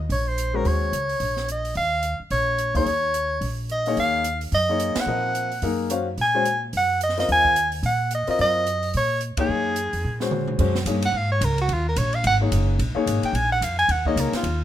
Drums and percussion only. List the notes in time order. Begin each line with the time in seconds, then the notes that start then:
0.10 open hi-hat
0.38 closed hi-hat
0.65 open hi-hat
0.93 closed hi-hat
1.09 open hi-hat
1.20 open hi-hat
1.37 snare
1.49 closed hi-hat
1.65 open hi-hat
1.75 open hi-hat
2.03 closed hi-hat
2.30 open hi-hat
2.58 closed hi-hat
2.75 open hi-hat
2.86 open hi-hat
3.14 closed hi-hat
3.41 open hi-hat
3.69 closed hi-hat
3.86 open hi-hat
3.97 open hi-hat
4.24 closed hi-hat
4.41 open hi-hat
4.52 open hi-hat
4.80 closed hi-hat
4.95 snare, ride
5.35 closed hi-hat
5.52 open hi-hat
5.62 open hi-hat
5.90 closed hi-hat
6.18 open hi-hat
6.45 closed hi-hat
6.73 open hi-hat
7.01 closed hi-hat
7.09 snare
7.17 snare, open hi-hat
7.29 open hi-hat
7.45 kick
7.56 closed hi-hat
7.72 open hi-hat
7.83 open hi-hat
8.11 closed hi-hat
8.27 open hi-hat
8.39 open hi-hat
8.67 closed hi-hat
8.83 open hi-hat
8.94 open hi-hat
9.21 closed hi-hat
9.37 kick, ride
9.76 closed hi-hat
9.93 open hi-hat
10.20 snare
10.31 high tom
10.48 mid tom
10.59 kick, crash
10.75 snare
10.86 hi-hat pedal, ride
11.02 ride
11.41 hi-hat pedal, ride
11.58 ride
11.69 ride
11.96 hi-hat pedal, ride
12.13 ride
12.24 ride
12.52 hi-hat pedal, ride
12.79 ride
13.07 hi-hat pedal, ride
13.23 ride
13.35 ride
13.62 hi-hat pedal, ride
13.79 ride
13.89 ride
14.05 kick
14.17 hi-hat pedal, ride
14.33 snare, ride
14.44 ride